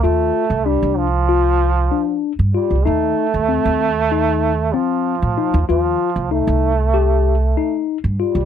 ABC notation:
X:1
M:9/8
L:1/16
Q:3/8=64
K:Eblyd
V:1 name="Tine electric piano"
F4 D4 F4 D4 F2 | E4 C4 E4 C4 E2 | F4 E4 G4 E4 F2 |]
V:2 name="Trombone" clef=bass
A,4 G,2 F,8 z2 G,2 | A,12 F,6 | F,4 A,8- A,2 z2 G,2 |]
V:3 name="Upright bass" clef=bass
E,,2 z C,,2 C,,8 z2 G,, z C,, | E,,2 z E,,2 E,,8 z2 A,, z E,, | E,,2 z C,,2 C,,8 z2 G,, z C,, |]